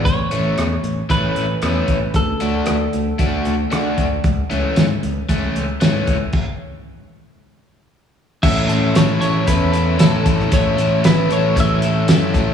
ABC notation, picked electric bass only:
X:1
M:4/4
L:1/8
Q:1/4=115
K:A
V:1 name="Picked electric bass" clef=bass
A,,, A,,, E,, A,,, A,,, A,,, E,, A,,, | D,, D,, D,, D,, D,, D,, D, D,, | C,, C,, G,, C,, C,, C,, G,, C,, | z8 |
A,,, A,,, A,,, A,,, E,,2 A,,, A,,, | A,,, A,,, A,,, A,,, A,,,2 F,, A,,, |]